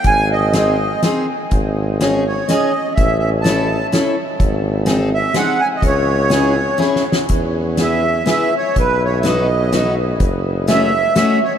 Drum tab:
HH |x--x--x--|x--x--x--|x--x--x--|x--x--x--|
SD |---o--o--|---o--o--|---o--o--|---o--o--|
BD |o--------|o--------|o--------|o--------|

HH |x--x-----|x--x--x--|x--x--x--|x--x--x--|
SD |---o--ooo|---o--o--|---o--o--|---o--o--|
BD |o--------|o--------|o--------|o--------|